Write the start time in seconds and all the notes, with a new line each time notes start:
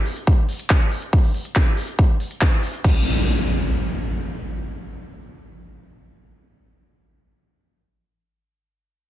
0.06 open hi-hat
0.17 closed hi-hat
0.27 kick, closed hi-hat
0.49 open hi-hat
0.59 closed hi-hat
0.70 kick, clap, closed hi-hat
0.92 open hi-hat
1.02 closed hi-hat
1.13 kick, closed hi-hat
1.24 open hi-hat
1.34 open hi-hat
1.45 closed hi-hat
1.56 kick, clap, closed hi-hat
1.77 open hi-hat
1.88 closed hi-hat
1.99 kick, closed hi-hat
2.20 open hi-hat
2.31 closed hi-hat
2.42 kick, clap, closed hi-hat
2.63 open hi-hat
2.74 closed hi-hat
2.84 kick, crash, impact